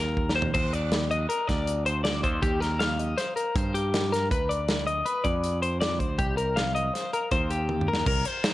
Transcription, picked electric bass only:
Already playing: D#2
0.55 D#2
1.49 D2
2.23 D#2
2.43 D#2
3.55 G2
4.31 D2
5.25 F2
6.00 D2
6.19 C2
7.32 D#2
8.06 C2

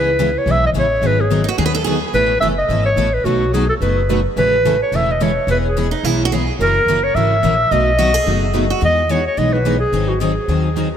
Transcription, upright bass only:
Already playing: C#2
0.46 B1
0.73 A1
1.02 G#1
1.58 D#2
2.13 A1
2.41 F#1
2.69 G#1
2.96 A1
3.24 B1
3.81 F#1
4.36 A1
4.92 E1
5.47 E1
6.03 B1
6.59 F#1
6.86 F#1
7.15 G#1
7.43 A#1
7.71 B1
8.26 F#1
8.82 E2
9.38 B1
9.92 G#1
10.48 D#2

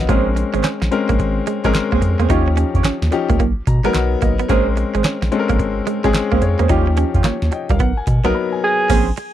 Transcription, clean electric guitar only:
0.09 A#3
0.36 muted clean electric guitar stroke
0.54 G#3
0.64 C#4
0.82 muted clean electric guitar stroke
1.09 A#3
1.20 muted clean electric guitar stroke
1.47 G#3
1.65 G#3
1.92 A#3
2.02 muted clean electric guitar stroke
2.20 A#3
2.30 D#4
2.48 muted clean electric guitar stroke
2.57 C#4
2.85 C#4
3.12 muted clean electric guitar stroke
3.30 A#3
3.40 A#3
3.67 muted clean electric guitar stroke
3.85 G#3
3.95 muted clean electric guitar stroke
4.22 A#3
4.40 B3
4.50 A#3
4.77 muted clean electric guitar stroke
4.95 G#3
5.05 C#4
5.22 muted clean electric guitar stroke
5.50 A#3
5.59 muted clean electric guitar stroke
5.87 G#3
6.04 G#3
6.32 A#3
6.42 muted clean electric guitar stroke
6.59 A#3
6.70 D#4
6.87 muted clean electric guitar stroke
6.98 C#4
7.25 A#3
7.53 muted clean electric guitar stroke
7.71 G3
7.80 B3
8.08 muted clean electric guitar stroke
8.25 B3
8.90 A#3
9.18 muted clean electric guitar stroke

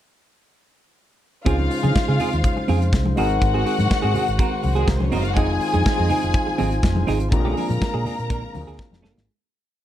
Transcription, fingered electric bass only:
1.47 C#2
1.84 C#3
2.09 C#3
2.33 D#2
2.69 F2
2.93 C2
3.18 G#1
3.42 G#1
3.80 G#2
3.91 muted fingered electric bass stroke
4.04 G#2
4.28 G#1
4.64 C2
4.88 C2
5.13 F#1
5.37 F1
5.75 F2
5.86 muted fingered electric bass stroke
5.99 F2
6.24 F1
6.60 G#1
6.84 F1
7.08 G#1
7.32 A#1
7.70 A#2
7.82 muted fingered electric bass stroke
7.95 A#2
8.19 A#2
8.30 A#1
8.55 D2
8.68 D2
8.92 F1
9.04 F#1
9.17 G#1

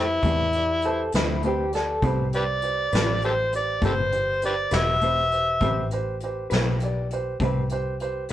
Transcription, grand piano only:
Already playing: G4 B4 C5
0.24 G4 B4 D5
0.55 G4 B4 D5
0.84 G4 B4 C5
1.14 G4 B4 C5
1.44 G4 B4 C5
1.73 G4 B4 D5
2.04 G4 B4 C5
2.34 G4 B4 C5
2.63 G4 B4 C5
2.95 G4 B4 C5
3.24 G4 B4 C5
3.53 G4 B4 C5
3.83 G4 B4 C5
4.12 G4 B4 C5
4.44 G4 B4 C5
4.73 G4 B4 C5
5.02 G4 B4 C5
5.32 G4 B4 C5
5.63 G4 B4 C5
5.92 G4 B4 C5
6.24 G4 B4 C5
6.52 G4 B4 C5
6.82 G4 B4 D5
7.13 G4 B4 C5
7.42 G4 B4 C5
7.71 G4 B4 C5
8.01 G4 B4 C5

